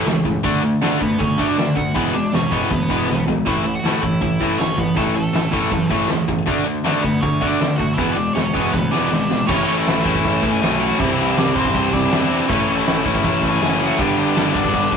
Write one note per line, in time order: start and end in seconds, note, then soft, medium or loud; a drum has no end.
0.00 0.20 A3 medium
0.00 0.20 A4 medium
0.06 0.36 C#2 medium
0.06 0.23 A2 medium
0.06 0.23 E3 medium
0.06 snare loud
0.06 open hi-hat medium
0.25 0.42 A2 medium
0.25 0.42 E3 medium
0.25 kick medium
0.25 open hi-hat soft
0.43 0.73 D2 medium
0.43 0.61 D3 medium
0.43 0.62 A3 loud
0.43 0.62 D4 loud
0.43 kick loud
0.43 open hi-hat medium
0.62 0.79 D3 medium
0.62 0.80 A3 medium
0.62 open hi-hat soft
0.81 0.96 D3 medium
0.81 0.99 D3 medium
0.81 1.00 A3 loud
0.81 1.00 D4 medium
0.81 snare loud
0.81 open hi-hat medium
1.00 1.16 D2 medium
1.00 1.17 D3 medium
1.00 1.18 A3 medium
1.00 1.18 B3 medium
1.00 1.19 B4 medium
1.00 kick medium
1.00 open hi-hat medium
1.18 1.49 D2 medium
1.18 1.36 D3 medium
1.18 1.36 A3 medium
1.18 1.45 C#4 medium
1.18 1.47 C#5 medium
1.18 kick loud
1.18 open hi-hat medium
1.38 1.56 D3 medium
1.38 1.56 A3 medium
1.38 1.56 D4 loud
1.38 kick medium
1.38 open hi-hat medium
1.48 1.74 D4 medium
1.48 1.77 D5 medium
1.57 1.87 D2 medium
1.57 1.74 D3 medium
1.57 1.74 A3 medium
1.57 snare loud
1.57 open hi-hat medium
1.75 1.93 D3 medium
1.75 1.93 A3 medium
1.75 1.93 F#4 medium
1.75 1.95 F#5 loud
1.75 kick medium
1.75 open hi-hat medium
1.94 2.25 E1 medium
1.94 2.12 E2 medium
1.94 2.13 B2 medium
1.94 2.12 E3 medium
1.94 2.13 G#3 medium
1.94 2.13 B3 loud
1.94 2.13 E4 medium
1.94 2.13 E5 medium
1.94 kick loud
1.94 open hi-hat medium
2.13 2.31 E2 medium
2.13 2.31 B2 medium
2.13 2.31 E3 medium
2.13 2.31 G#3 medium
2.13 2.31 D4 medium
2.13 2.36 D5 medium
2.13 open hi-hat medium
2.33 2.62 E1 medium
2.33 2.50 E2 medium
2.33 2.50 B2 medium
2.33 2.50 E3 medium
2.33 2.50 G#3 medium
2.33 2.69 C#4 medium
2.33 2.73 C#5 medium
2.33 snare loud
2.33 open hi-hat medium
2.51 2.68 E2 medium
2.51 2.68 B2 loud
2.51 2.69 E3 medium
2.51 2.69 G#3 medium
2.51 2.70 B3 loud
2.51 kick medium
2.51 open hi-hat medium
2.70 2.85 D2 medium
2.70 2.87 E2 medium
2.70 2.87 B2 medium
2.70 2.87 E3 medium
2.70 2.88 G#3 medium
2.70 3.24 B3 medium
2.70 3.23 B4 medium
2.70 kick loud
2.70 open hi-hat medium
2.89 3.04 E1 medium
2.89 3.07 E2 medium
2.89 3.07 B2 medium
2.89 3.07 E3 medium
2.89 3.08 G#3 medium
2.89 3.08 B3 loud
2.89 kick medium
2.89 open hi-hat medium
3.08 3.38 B1 medium
3.08 3.25 E2 medium
3.08 3.25 B2 medium
3.08 3.26 E3 medium
3.08 3.26 G#3 medium
3.08 snare medium
3.27 3.44 E2 medium
3.27 3.44 B2 medium
3.27 3.44 E3 medium
3.27 3.45 G#3 medium
3.27 floor tom medium
3.46 3.76 A1 loud
3.46 3.64 A2 medium
3.46 3.64 E3 loud
3.46 3.64 A3 loud
3.46 3.73 E4 medium
3.46 3.74 E5 medium
3.46 kick loud
3.46 open hi-hat medium
3.65 3.82 A2 medium
3.65 3.82 E3 medium
3.65 open hi-hat soft
3.75 4.01 F#4 medium
3.75 4.03 F#5 medium
3.84 3.98 A2 medium
3.84 4.02 A2 medium
3.84 4.02 E3 medium
3.84 4.03 A3 loud
3.84 snare loud
3.84 open hi-hat medium
4.03 4.17 A1 medium
4.03 4.20 A2 medium
4.03 4.20 E3 medium
4.03 4.20 E4 medium
4.03 4.21 E5 medium
4.03 kick medium
4.03 open hi-hat soft
4.21 4.51 A1 medium
4.21 4.38 A2 medium
4.21 4.38 E3 medium
4.21 4.57 E4 medium
4.21 4.61 E5 medium
4.21 kick loud
4.21 open hi-hat medium
4.41 4.58 A2 medium
4.41 4.58 E3 medium
4.41 4.59 A3 medium
4.41 kick medium
4.41 open hi-hat medium
4.58 4.88 A1 medium
4.58 4.76 A2 medium
4.58 4.77 E3 medium
4.58 4.76 C#4 medium
4.58 4.79 C#5 medium
4.58 snare loud
4.58 open hi-hat medium
4.78 4.95 A2 medium
4.78 4.95 E3 medium
4.78 4.96 B3 medium
4.78 4.97 B4 medium
4.78 kick medium
4.78 open hi-hat medium
4.96 5.26 A1 medium
4.96 5.14 A2 medium
4.96 5.15 E3 loud
4.96 5.03 A3 medium
4.96 5.15 A3 loud
4.96 5.02 A4 medium
4.96 kick loud
4.96 open hi-hat medium
5.15 5.32 A2 medium
5.15 5.33 E3 medium
5.15 6.25 A3 medium
5.15 5.88 A4 medium
5.15 open hi-hat medium
5.33 5.64 A1 medium
5.33 5.51 A2 medium
5.33 5.51 E3 medium
5.33 snare loud
5.33 open hi-hat medium
5.52 5.70 A2 medium
5.52 5.71 E3 loud
5.52 5.71 A3 medium
5.52 kick medium
5.52 open hi-hat medium
5.71 5.86 F#2 medium
5.71 5.89 A2 medium
5.71 5.89 E3 medium
5.71 kick loud
5.71 open hi-hat medium
5.88 6.06 A1 medium
5.88 6.08 A2 medium
5.88 6.08 E3 loud
5.88 6.09 A3 loud
5.88 6.25 G#4 medium
5.88 kick medium
5.88 open hi-hat medium
6.09 6.39 E2 medium
6.09 6.26 A2 medium
6.09 6.27 E3 medium
6.09 snare loud
6.09 open hi-hat medium
6.28 6.45 A2 medium
6.28 6.45 E3 medium
6.28 kick medium
6.28 open hi-hat medium
6.46 6.77 D2 medium
6.46 6.63 D3 medium
6.46 6.64 A3 loud
6.46 6.65 D4 loud
6.46 kick loud
6.46 open hi-hat medium
6.64 6.82 D3 medium
6.64 6.83 A3 medium
6.64 open hi-hat soft
6.84 7.01 D3 medium
6.84 7.00 D3 medium
6.84 7.02 A3 medium
6.84 7.03 D4 loud
6.84 snare loud
6.84 open hi-hat medium
7.02 7.19 D2 medium
7.02 7.20 D3 medium
7.02 7.21 A3 medium
7.02 7.21 B3 medium
7.02 7.21 B4 medium
7.02 kick medium
7.02 open hi-hat medium
7.22 7.52 D2 medium
7.22 7.40 D3 medium
7.22 7.40 A3 medium
7.22 7.49 C#4 medium
7.22 7.48 C#5 medium
7.22 kick loud
7.22 open hi-hat medium
7.41 7.59 D3 medium
7.41 7.59 A3 medium
7.41 7.59 D4 loud
7.41 kick medium
7.41 open hi-hat medium
7.48 7.77 D4 medium
7.48 7.76 D5 loud
7.60 7.90 D2 medium
7.60 7.77 D3 medium
7.60 7.78 A3 loud
7.60 snare loud
7.60 open hi-hat medium
7.76 7.96 D3 medium
7.76 7.96 A3 medium
7.76 7.96 F#4 medium
7.76 7.94 F#5 loud
7.76 kick medium
7.76 open hi-hat medium
7.94 8.27 E1 medium
7.94 8.15 E2 medium
7.94 8.15 E3 loud
7.94 8.15 G#3 loud
7.94 8.15 E4 medium
7.94 8.16 E5 loud
7.94 open hi-hat medium
7.98 8.15 B2 medium
7.98 8.16 B3 loud
7.98 kick loud
8.13 8.34 E2 medium
8.13 8.34 B2 medium
8.13 8.33 E3 medium
8.13 8.34 G#3 medium
8.13 8.34 D4 medium
8.13 8.33 D5 medium
8.13 open hi-hat medium
8.33 8.66 E1 medium
8.33 8.52 E2 medium
8.33 8.53 B2 medium
8.33 8.52 E3 medium
8.33 8.53 G#3 medium
8.33 8.70 C#4 medium
8.33 8.72 C#5 medium
8.33 open hi-hat medium
8.37 snare loud
8.53 8.71 E2 medium
8.53 8.72 B2 medium
8.53 8.71 E3 medium
8.53 8.72 G#3 medium
8.53 8.72 B3 medium
8.53 kick medium
8.53 open hi-hat medium
8.72 8.88 D2 medium
8.72 8.90 E2 medium
8.72 8.90 B2 medium
8.72 8.90 E3 medium
8.72 8.91 G#3 medium
8.72 9.27 B3 medium
8.72 9.26 B4 medium
8.72 kick loud
8.72 snare medium
8.91 9.07 E1 medium
8.91 9.09 E2 medium
8.91 9.10 B2 medium
8.91 9.10 E3 medium
8.91 9.10 G#3 medium
8.91 9.11 B3 medium
8.91 9.45 D4 medium
8.91 9.44 D5 medium
8.91 snare medium
9.10 9.41 G#1 medium
9.10 9.28 E2 medium
9.10 9.28 B2 medium
9.10 9.28 E3 medium
9.10 9.28 G#3 medium
9.10 snare medium
9.29 9.47 E2 medium
9.29 9.45 B2 medium
9.29 9.47 E3 medium
9.29 9.47 G#3 medium
9.29 snare medium
9.47 9.63 A1 loud
9.47 10.04 A2 loud
9.47 10.06 E3 loud
9.47 10.04 A3 loud
9.47 9.75 C#4 medium
9.47 10.04 C#4 loud
9.47 9.77 C#5 medium
9.47 kick loud
9.47 crash loud
9.47 crash medium
9.51 10.03 E4 loud
9.68 9.82 A1 medium
9.77 10.04 E4 medium
9.77 10.03 E5 medium
9.87 10.16 A1 loud
9.87 snare loud
9.87 crash medium
10.04 10.59 A2 medium
10.04 10.62 E3 medium
10.04 10.61 A3 medium
10.04 10.60 C#4 medium
10.04 10.64 E4 loud
10.04 10.49 E4 medium
10.04 10.53 E5 medium
10.04 kick medium
10.15 kick medium
10.25 10.39 A1 loud
10.25 kick medium
10.25 crash medium
10.43 10.57 A1 medium
10.43 kick medium
10.52 10.79 G#4 medium
10.52 10.81 G#5 medium
10.61 10.91 B1 medium
10.61 10.98 A2 medium
10.61 10.99 E3 medium
10.61 10.99 A3 medium
10.61 10.99 C#4 medium
10.61 11.01 E4 medium
10.61 snare loud
10.61 crash medium
10.80 10.99 A2 medium
10.80 11.01 E3 medium
10.80 10.98 A3 medium
10.80 10.98 F#4 medium
10.80 10.99 F#5 loud
10.98 11.14 C2 loud
10.98 11.54 C3 loud
10.98 11.58 E3 loud
10.98 11.55 G3 loud
10.98 11.55 C4 loud
10.98 11.35 E4 medium
10.98 11.54 E4 loud
10.98 11.38 E5 medium
10.98 kick loud
10.98 crash medium
11.18 11.33 C2 medium
11.37 11.66 C2 loud
11.37 11.55 D4 medium
11.37 11.56 D5 medium
11.37 snare loud
11.37 crash medium
11.55 12.10 E3 medium
11.55 12.11 G3 medium
11.55 12.11 C4 medium
11.55 11.92 C4 medium
11.55 12.10 E4 medium
11.55 11.93 C5 medium
11.55 kick medium
11.59 12.09 C3 medium
11.65 kick medium
11.74 11.89 C2 medium
11.74 kick loud
11.74 crash medium
11.93 12.07 C2 medium
11.93 12.47 D4 medium
11.93 12.46 D5 loud
11.93 kick medium
12.11 12.41 E2 medium
12.11 12.48 C3 medium
12.11 12.48 E3 loud
12.11 12.49 G3 medium
12.11 12.49 C4 loud
12.11 12.49 E4 medium
12.11 snare loud
12.11 crash medium
12.30 12.48 C3 medium
12.30 12.49 G3 medium
12.30 12.48 C4 medium
12.48 12.64 A1 loud
12.48 13.04 A2 loud
12.48 13.05 E3 loud
12.48 13.05 A3 loud
12.48 12.76 C#4 medium
12.48 13.05 C#4 loud
12.48 13.04 E4 loud
12.48 12.75 C#5 medium
12.48 kick loud
12.48 crash medium
12.68 12.82 A1 medium
12.75 13.04 E4 medium
12.75 13.03 E5 medium
12.87 13.16 A1 medium
12.87 snare loud
12.87 crash medium
13.04 13.61 E3 medium
13.04 13.61 A3 medium
13.04 13.61 C#4 medium
13.04 13.61 E4 medium
13.04 13.50 E4 medium
13.04 13.49 E5 medium
13.04 kick medium
13.08 13.60 A2 medium
13.15 kick medium
13.24 13.39 A1 medium
13.24 kick loud
13.24 crash medium
13.43 13.57 A1 medium
13.43 kick medium
13.50 13.78 G#4 medium
13.50 13.80 G#5 medium
13.61 13.91 F#1 loud
13.61 13.98 A2 medium
13.61 13.99 E3 medium
13.61 13.99 A3 medium
13.61 14.00 C#4 loud
13.61 14.00 E4 loud
13.61 snare loud
13.61 crash medium
13.79 13.99 A2 medium
13.79 13.99 E3 medium
13.79 13.98 A3 medium
13.79 13.99 F#4 medium
13.79 13.98 F#5 loud
13.98 14.13 G1 medium
13.98 14.54 G2 loud
13.98 14.55 D3 loud
13.98 14.55 G3 loud
13.98 14.54 B3 loud
13.98 14.53 D4 loud
13.98 14.35 G4 medium
13.98 14.35 G5 loud
13.98 kick loud
13.98 crash medium
14.18 14.32 G1 medium
14.36 14.66 G1 loud
14.36 14.55 E4 medium
14.36 14.56 E5 medium
14.36 snare loud
14.36 crash medium
14.54 14.97 D3 medium
14.54 14.97 G3 medium
14.54 14.97 B3 medium
14.54 14.97 D4 medium
14.54 14.91 D4 medium
14.54 14.91 D5 loud
14.54 kick medium
14.58 14.97 G2 medium
14.64 kick medium
14.73 14.88 G1 medium
14.73 kick medium
14.73 crash medium
14.92 14.97 G1 loud
14.92 14.97 D5 medium
14.92 kick medium